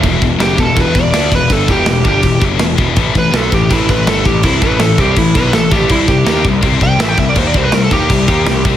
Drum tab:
CC |xxxxxxxx|xxxxxxxx|xxxxxxxx|xxxxxxxx|
SD |--o---o-|--o---o-|--o---o-|--o---o-|
BD |oo-ooo-o|oo-ooo-o|oo-ooo-o|oo-ooo-o|

CC |xxxxxxxx|xxxxxxxx|
SD |--o---o-|--o---o-|
BD |oo-ooo-o|oo-ooo-o|